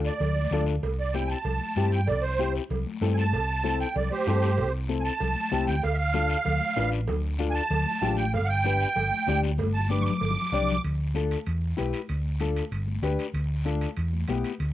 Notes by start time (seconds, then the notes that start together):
Already playing: D4 F4 A4
0.05 D5, short guiro
0.20 D2, cowbell, low conga, long guiro
0.36 high conga
0.51 D2 D4 F4 A4, cowbell, high conga, low conga, short guiro
0.66 short guiro
0.82 C2, cowbell, high conga, long guiro
1.00 D5
1.14 C4 E4 G4 G5, high conga, short guiro
1.26 G#5, short guiro
1.31 A5
1.45 C2, cowbell, high conga, low conga, long guiro
1.61 high conga
1.76 G2 C4 E4 G4, high conga, short guiro
1.91 G5, high conga, short guiro
2.07 C2 D5, cowbell, high conga, low conga, long guiro
2.22 C5
2.39 C4 E4 G4, high conga, short guiro
2.56 short guiro
2.70 C2, cowbell, high conga, low conga, long guiro
2.86 high conga
3.01 G2 C4 E4 A4, high conga, low timbale, short guiro
3.14 G#5, high conga, short guiro
3.18 A5
3.32 C2, cowbell, high conga, long guiro
3.64 C4 E4 A4, high conga, short guiro
3.81 G5, short guiro
3.96 C2 D5, cowbell, high conga, low conga, long guiro
4.11 G4 C5, high conga
4.26 G2 C4 E4 A4, high conga, low timbale, short guiro
4.42 high conga, short guiro
4.57 C2, cowbell, long guiro
4.88 C4 E4 A4, high conga, short guiro
5.00 G#5
5.04 A5, short guiro
5.20 C2, cowbell, high conga, low conga, long guiro
5.36 high conga
5.51 C2 C4 E4 G4, high conga, short guiro
5.67 D2 G5, high conga, short guiro
5.83 D2 F5, cowbell, high conga, long guiro
5.94 E5
5.98 F5
6.13 D4 F4 A4, high conga, short guiro
6.29 short guiro
6.45 D2, cowbell, high conga, low conga, long guiro
6.61 high conga
6.76 A1 D4 F4 B4, high conga, low timbale, short guiro
6.92 high conga, short guiro
7.07 D2, cowbell, high conga, low conga, long guiro
7.39 D4 F4 A4, high conga, short guiro
7.51 G#5 A5
7.55 short guiro
7.70 D2, cowbell, high conga, low conga, long guiro
7.86 high conga
8.01 A1 D4 F4 G4, high conga, low conga, low timbale, short guiro
8.17 G5, high conga, short guiro
8.33 G1 F5, cowbell, high conga, long guiro
8.45 F#5
8.49 G5
8.64 D4 G4 B4, high conga, short guiro
8.80 short guiro
8.95 G1, cowbell, high conga, low conga, long guiro
9.11 high conga
9.27 D2 D4 G4 D5, high conga, low timbale, short guiro
9.42 high conga, short guiro
9.58 G1, cowbell, high conga, long guiro
9.74 A5
9.80 high conga
9.90 D4 G4 B4 D6, high conga, short guiro
10.00 C#6, low conga
10.05 D6, short guiro
10.10 low conga
10.21 G1, cowbell, long guiro
10.31 low conga
10.42 low conga
10.52 C2 D4 G4 D5, low conga, short guiro
10.63 low conga
10.69 low conga, short guiro
10.84 D2, high timbale, long guiro
11.14 D4 F4 A4, high conga, high timbale, short guiro
11.31 high timbale, short guiro
11.46 E2, high timbale, long guiro
11.77 B1 E4 G4 B4, high conga, high timbale, short guiro
11.93 high timbale, short guiro
12.09 D2, high timbale, long guiro
12.40 D4 F4 A4, high conga, high timbale, short guiro
12.56 high timbale, short guiro
12.71 G1, high timbale, long guiro
12.87 high conga
13.02 D2 D4 G4 B4, high conga, high timbale, short guiro
13.19 high timbale, short guiro
13.34 D2, high timbale, long guiro
13.65 D4 F4 A4, high conga, high timbale, short guiro
13.81 high timbale, short guiro
13.96 E2, high timbale, long guiro
14.13 high conga
14.27 B1 B3 E4 G4, high conga, high timbale, short guiro
14.44 high timbale, short guiro
14.60 D2, high timbale, long guiro